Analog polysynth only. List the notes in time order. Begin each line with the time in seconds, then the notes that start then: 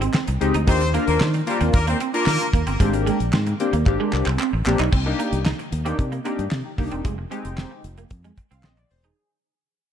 0.40 G#3 C4 D#4 G4
0.67 A#3 D4 F4 G4
0.93 A#3 D4 F4 A#4
1.46 A#3 D4 F4 A#4
2.13 A#3 D4 F4 A#4
2.80 A#3 C4 D4 G4
3.60 A#3 C4 D4 G4
3.86 A#3 C4 D4 G4
4.66 A#3 C4 D4 G4
5.05 A#3 D4 D#4 G4
5.72 D#4 A#4
5.85 A#3 D4 D#4 G4
6.24 A#3 D4 D#4 G4
6.64 D#4 G4
6.78 A#3 D4 D#4 G4
7.30 G#3 C4 D#4 G4
8.51 F5
8.64 D#5
8.78 D5
8.91 C5
9.04 G#4